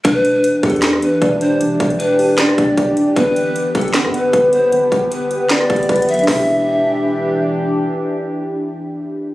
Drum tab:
HH |x-----------x-----------x-----------x---x---x---x-----------x-----------x-----------x-----------|x-----------x-----x-----x-----------o-----------x-----------x-----------x-----------x-----------|x-----------x-----------x-----------x---x---x---x-----------x-----------x-----------x-----------|x-----------x-----------x-----------x-----------x-----------x---x---x---x---x---x---x--x--x--x--|
CP |------------------------------------------------x-----------------------------------------------|------------------------------------------------x-----------------------------------------------|------------------------------------------------x-----------------------------------------------|------------------------------------------------x-----------------------------------------------|
SD |------------------------------------------------o-----r-----------------------------------------|------------------------------------------------o-----r-----------------------------------------|------------------------------------------------o-----r-----------------------------------------|------------------------------------------------o-----r-----------------------------------------|
BD |o-----------------------------------o-----------------------------------o-----------------------|------------o-----------------------------------------------o-----------o-----------------------|o-----------------------------------o-----------------------------------o-----------------------|------------o-----------------------------------------------o-----------o-----------------------|

HH |o-----------------------------------------------------------------------------------------------|------------------------------------------------------------------------------------------------|
CP |------------------------------------------------------------------------------------------------|------------------------------------------------------------------------------------------------|
SD |o-----------------------------------------------------------------------------------------------|------------------------------------------------------------------------------------------------|
BD |o-----------------------------------------------------------------------------------------------|------------------------------------------------------------------------------------------------|